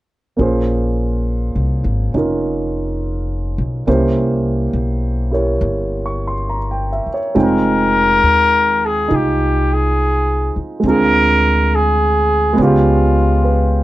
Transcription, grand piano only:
0.37 3.86 A#3 soft
0.37 2.12 C#4 soft
0.37 2.15 F4 soft
0.37 3.88 G#4 soft
0.42 3.87 C5 soft
2.14 3.86 C#4 soft
2.14 3.87 D#4 soft
2.14 3.88 F4 soft
2.14 3.88 A#4 soft
3.87 7.35 A#3 soft
3.87 7.35 C#4 soft
3.87 5.30 E4 soft
3.87 5.30 G4 soft
3.87 7.36 C5 soft
5.31 7.35 E4 soft
5.31 7.35 G4 soft
5.31 7.36 A#4 soft
5.31 7.12 C#5 soft
6.06 6.32 C#6 soft
6.27 6.57 C6 soft
6.50 6.90 A#5 soft
6.71 7.08 G5 soft
6.92 7.19 E5 soft
7.14 7.44 C#5 soft
7.35 10.78 G#3 soft
7.35 10.81 C4 soft
7.35 9.07 D#4 soft
7.35 9.08 F4 soft
7.35 10.84 G5 soft
9.08 10.83 D#4 soft
9.08 10.84 F4 soft
10.80 12.52 G#3 soft
10.80 12.57 C4 soft
10.85 12.58 D4 soft
10.85 12.59 F4 soft
10.90 12.60 G#4 soft
12.53 13.83 G#3 medium
12.53 13.83 B3 soft
12.58 13.83 C#4 soft
12.58 13.83 F4 soft
12.64 13.83 G4 medium
13.45 13.83 B4 soft

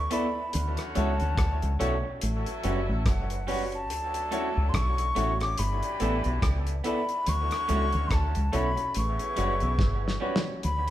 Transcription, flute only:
0.00 0.15 C#6 loud
0.13 0.72 B5 medium
0.97 1.76 A5 loud
3.08 3.69 F#5 medium
3.75 4.71 A5 loud
4.69 4.77 C6 medium
4.75 5.41 C#6 loud
5.41 5.61 D6 loud
5.59 6.43 B5 loud
6.85 7.30 B5 loud
7.29 8.15 C#6 loud
8.14 8.57 A5 loud
8.56 8.96 B5 loud
8.98 10.19 C#6 loud
10.64 10.90 B5 loud

